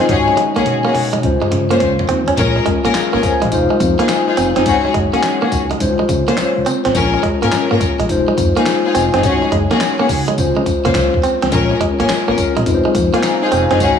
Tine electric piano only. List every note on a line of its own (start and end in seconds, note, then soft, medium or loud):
0.00 0.08 G#3 medium
0.00 0.09 D#4 medium
0.00 0.10 F4 medium
0.00 0.11 A#4 medium
0.00 0.11 C5 medium
0.00 0.27 D#5 medium
0.08 1.20 G#3 medium
0.08 1.21 D#4 medium
0.08 1.21 F#4 medium
0.08 1.22 C#5 medium
1.23 2.35 G#3 medium
1.23 2.35 C#4 medium
1.23 2.36 F4 medium
1.23 2.36 C5 medium
2.37 3.49 G#3 medium
2.37 3.50 C#4 medium
2.37 3.50 F4 medium
2.37 2.66 A#4 medium
2.96 3.23 G#4 medium
2.96 3.22 F5 medium
3.24 3.42 C5 medium
3.24 3.42 G#5 medium
3.43 3.70 G#4 medium
3.43 3.70 F5 medium
3.51 4.63 G#3 medium
3.51 4.64 D#4 medium
3.51 4.64 F4 medium
3.51 4.65 C5 medium
4.65 5.78 G#3 medium
4.65 5.78 D#4 medium
4.65 5.78 F#4 medium
4.65 4.76 C5 medium
4.74 5.82 C#5 medium
5.80 6.92 G#3 medium
5.80 6.92 C#4 medium
5.80 5.89 D#4 medium
5.80 6.93 C5 medium
5.88 6.95 F4 medium
6.38 6.91 C#5 medium
6.94 8.07 G#3 medium
6.94 8.07 C#4 medium
6.94 8.07 F4 medium
6.94 8.08 A#4 medium
8.09 9.21 G#3 medium
8.09 9.21 D#4 medium
8.09 9.22 F4 medium
8.09 9.22 C5 medium
9.23 10.35 G#3 medium
9.23 10.35 D#4 medium
9.23 10.36 F#4 medium
9.23 10.36 C#5 medium
10.37 11.49 G#3 medium
10.37 11.50 C#4 medium
10.37 11.50 F4 medium
10.37 11.51 C5 medium
11.51 12.64 G#3 medium
11.51 11.80 C#4 medium
11.51 11.80 F4 medium
11.51 11.81 A#4 medium
12.29 12.38 F4 medium
12.29 12.37 C#5 medium
12.38 12.56 C#4 medium
12.38 12.56 A#4 medium
12.57 12.84 C4 medium
12.57 12.84 G#4 medium
12.66 13.78 G#3 medium
12.66 13.78 D#4 medium
12.66 13.79 F4 medium
12.66 12.76 B4 medium
12.74 12.98 C5 medium
13.24 13.42 A#5 medium
13.43 13.52 C5 medium
13.43 13.52 G#5 medium
13.53 13.71 G#4 medium
13.53 13.70 F5 medium
13.71 13.98 D#5 medium
13.80 13.99 G#3 medium
13.80 13.99 D#4 medium
13.80 13.99 F#4 medium
13.80 13.99 C#5 medium